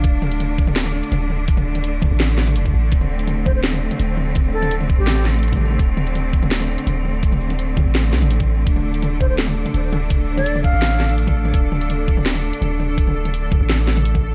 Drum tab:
HH |x-----x-x-------x-----x-x-------|x-----x-x-------x-----x-x-------|x-----x-x-------x-----x-x-------|x-----x-x-------x-----xxxx------|
SH |--------------------------------|--------------------------x-----|--------------------------------|--------------------------x-----|
SD |----------------o---------------|----------------o---o-----------|----------------o---------------|----------------o---o-----------|
T2 |----o---o-----o---o-----o---o---|--o---o-----o---o-----o---o-----|--o-----o---o-----o---o-----o---|o-----o---o-----o---o-----ooooo-|
BD |o-----------o-------------------|o-----------o-------------o-----|o-----------o-------------------|o-----------o-------------o-----|

HH |x-----x-x-------x-----x-x-------|x-----x-x-------x-----x-x-------|x-----x-x-------x-----x-x-------|x-----x-x-------x-----x-x-------|
SH |--------------------------------|----x---------------------x-----|--------------------------------|-------------------------x------|
SD |----------------o---------------|----------------o---o-----------|----------------o---------------|----------------o---o-----------|
T2 |----o---o-----o---o-----o---o---|--o---o-----o---o-----o---o-----|--o-----o---o-----o---o-----o---|o-----o---o-----o---o-----o---o-|
BD |o-----------o-------------------|o-----------o-------------o-----|o-----------o-------------------|o-----------o-------------o-----|

HH |x-----x-x-------x-----x-x-------|x-----x-x-------x-----x-x-------|
SH |--------------------------------|--------------------------x-----|
SD |----------------o---------------|----------------o---o-----------|
T2 |----o---o-----o---o-----o---o---|--o---o-----o---o-----o---o-----|
BD |o-----------o-------------------|o-----------o-------------o-----|